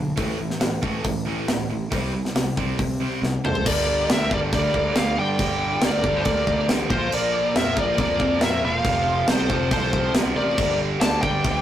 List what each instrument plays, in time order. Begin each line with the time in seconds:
Already playing: overdriven electric guitar G2 D3
0.17 fingered electric bass A1, overdriven electric guitar A2 E3 A3, kick, open hi-hat
0.39 fingered electric bass A1, overdriven electric guitar A2 E3
0.50 snare
0.61 fingered electric bass A1, overdriven electric guitar A2 E3, snare, open hi-hat
0.82 fingered electric bass A1, overdriven electric guitar A2 E3 A3, kick
1.04 fingered electric bass A1, overdriven electric guitar A2 E3, kick, open hi-hat
1.26 overdriven electric guitar A2 E3 A3
1.48 fingered electric bass A1, overdriven electric guitar A2 E3, snare, open hi-hat
1.70 fingered electric bass A1, overdriven electric guitar A2 E3
1.91 fingered electric bass C2, overdriven electric guitar C3 G3 C4, kick, open hi-hat
2.14 overdriven electric guitar C3 G3
2.25 snare
2.36 fingered electric bass C2, overdriven electric guitar C3 G3, snare, open hi-hat
2.56 fingered electric bass C2, overdriven electric guitar C3 G3 C4, kick
2.79 overdriven electric guitar C3 G3, fingered electric bass C3, kick, open hi-hat
3.00 overdriven electric guitar C3 G3 C4
3.22 fingered electric bass C2, overdriven electric guitar C3 G3, snare
3.44 fingered electric bass A1, overdriven electric guitar C3 G3, lead electric guitar A4 C5, mid tom
3.55 floor tom
3.65 fingered electric bass G1, overdriven electric guitar G2 D3 G3, tonewheel organ G3 D4 A5, lead electric guitar A#4 D5, kick, crash
4.09 fingered electric bass D2, overdriven electric guitar G2 D3 G3, lead electric guitar A#4 E5, snare, crash
4.31 fingered electric bass G1, overdriven electric guitar G2 D3 G3, lead electric guitar D5, kick
4.35 lead electric guitar A#4
4.53 fingered electric bass D2, overdriven electric guitar G2 D3 G3, lead electric guitar D5, kick, crash
4.57 lead electric guitar A#4
4.74 fingered electric bass D2, kick
4.95 fingered electric bass D2, overdriven electric guitar G2 D3 G3, lead electric guitar D5 F5, snare, crash
5.18 overdriven electric guitar G2 D3 G3, fingered electric bass G2, lead electric guitar D5 G5
5.39 fingered electric bass G1, overdriven electric guitar G2 D3 G3, kick, crash
5.81 fingered electric bass D2, overdriven electric guitar G2 D3 G3, lead electric guitar D5, snare, crash
5.86 lead electric guitar A#4
6.04 fingered electric bass G1, overdriven electric guitar G2 D3 G3, kick
6.17 lead electric guitar A4 C5
6.24 fingered electric bass D2, overdriven electric guitar G2 D3 G3, lead electric guitar A#4 D5, kick, crash
6.47 fingered electric bass D2, kick
6.68 fingered electric bass A1, overdriven electric guitar G2 D3 G3, snare, crash
6.89 fingered electric bass A#1, overdriven electric guitar A#2 F3 A#3, tonewheel organ A#3 F4 C5, lead electric guitar C5, kick
6.94 lead electric guitar F4
7.11 fingered electric bass A#1, overdriven electric guitar A#2 F3 A#3, lead electric guitar A#4 D5, crash
7.55 fingered electric bass F2, overdriven electric guitar A#2 F3 A#3, lead electric guitar A#4 E5, snare, crash
7.76 fingered electric bass A#1, overdriven electric guitar A#2 F3 A#3, lead electric guitar A#4 D5, kick
7.97 fingered electric bass F2, overdriven electric guitar A#2 F3 A#3, lead electric guitar A#4, kick, crash
8.01 lead electric guitar D5
8.20 fingered electric bass F2, kick
8.41 fingered electric bass F2, overdriven electric guitar A#2 F3 A#3, lead electric guitar A#4 E5, snare, crash
8.62 fingered electric bass E1, overdriven electric guitar A#2 F3 A#3, lead electric guitar C5 E5
8.76 lead electric guitar F5
8.84 fingered electric bass F1, overdriven electric guitar F2 C3 F3, tonewheel organ F3 C4 G4, kick, crash
9.27 fingered electric bass C2, overdriven electric guitar F2 C3 F3, lead electric guitar A4 C5, snare, crash
9.49 fingered electric bass F1, overdriven electric guitar F2 C3 F3, kick
9.71 fingered electric bass C2, overdriven electric guitar F2 C3 F3, lead electric guitar A4 C5, kick, crash
9.93 fingered electric bass C2, kick
10.14 fingered electric bass C2, overdriven electric guitar F2 C3 F3, snare, crash
10.36 fingered electric bass A1, overdriven electric guitar F2 C3 F3, lead electric guitar A#4 D5
10.57 fingered electric bass G1, overdriven electric guitar G2 D3 G3, tonewheel organ G3 D4 A5, kick, crash
11.01 fingered electric bass D2, overdriven electric guitar G2 D3 G3, lead electric guitar D5 A5, snare, crash
11.21 fingered electric bass G1, overdriven electric guitar G2 D3 G3, lead electric guitar D5 G5, kick
11.45 fingered electric bass D2, overdriven electric guitar G2 D3 G3, kick, crash